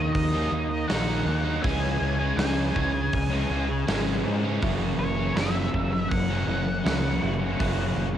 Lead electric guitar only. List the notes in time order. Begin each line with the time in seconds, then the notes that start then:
Already playing: D#5
0.13 D#5
0.88 F#5
1.63 G#5
2.37 G#5
4.99 C#5
5.37 E5
6.09 F#5